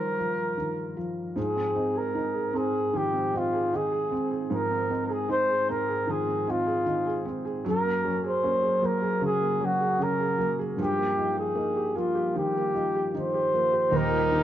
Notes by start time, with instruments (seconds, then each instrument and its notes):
Already playing: felt piano G2 D#3 F3 G3, flugelhorn A#4
0.18 felt piano F3
0.57 felt piano D#3
0.97 felt piano F3
1.36 felt piano G#2 F3, flugelhorn G#4
1.56 felt piano C4
1.75 felt piano C4 D#4
1.95 felt piano G#4, flugelhorn A#4
2.15 felt piano D#4
2.34 felt piano G#4
2.53 felt piano C4, flugelhorn G#4
2.93 felt piano D#3 F3, flugelhorn G4
3.13 felt piano C4
3.33 felt piano C4 D#4, flugelhorn F4
3.53 felt piano G#4
3.73 felt piano D#3 D#4, flugelhorn G#4
3.92 felt piano G#4
4.11 felt piano C4
4.31 felt piano G#4
4.50 felt piano G#2 F3, flugelhorn A#4
4.71 felt piano C4
4.90 felt piano C4 D#4
5.06 felt piano G#4, flugelhorn A#4
5.12 flugelhorn G#4
5.29 felt piano D#4, flugelhorn C5
5.49 felt piano G#4
5.69 felt piano C4, flugelhorn A#4
5.88 felt piano G#4
6.07 felt piano D#3 F3, flugelhorn G#4
6.27 felt piano C4
6.47 felt piano C4 D#4, flugelhorn F4
6.67 felt piano G#4
6.86 felt piano D#3 D#4
7.06 felt piano G#4
7.25 felt piano C4
7.45 felt piano G#4
7.64 felt piano F#2 F#3
7.69 flugelhorn A#4
7.84 felt piano A#3
8.04 felt piano F#3 C#4
8.24 felt piano G#4, flugelhorn C5
8.43 felt piano A#3 C#4
8.63 felt piano G#4
8.82 felt piano F#3 A#3, flugelhorn A#4
9.02 felt piano G#4
9.21 felt piano C#3 F#3, flugelhorn G#4
9.41 felt piano A#3
9.60 felt piano F#3 C#4
9.65 flugelhorn F#4
9.80 felt piano G#4
9.99 felt piano C#3 C#4
10.03 flugelhorn A#4
10.20 felt piano G#4
10.38 felt piano F#3 A#3
10.59 felt piano G#4
10.77 felt piano G2 F3
10.82 flugelhorn G4
10.98 felt piano A#3
11.17 felt piano F3 D#4
11.39 flugelhorn G#4
11.55 felt piano A#3 D#4
11.77 felt piano G4
11.95 felt piano F3 A#3, flugelhorn F4
12.15 felt piano G4
12.35 felt piano D#3 F3, flugelhorn G4
12.55 felt piano A#3
12.74 felt piano F3 D#4
12.95 felt piano G4
13.14 felt piano D#3 D#4, flugelhorn C5
13.34 felt piano G4
13.53 felt piano F3 A#3
13.72 felt piano G4
13.91 felt piano D#1 D#2 A#3, string section D#3 G3 A#3 G4, cello D#4
13.97 flugelhorn A#4
14.11 felt piano A#2
14.32 felt piano D#3 A#3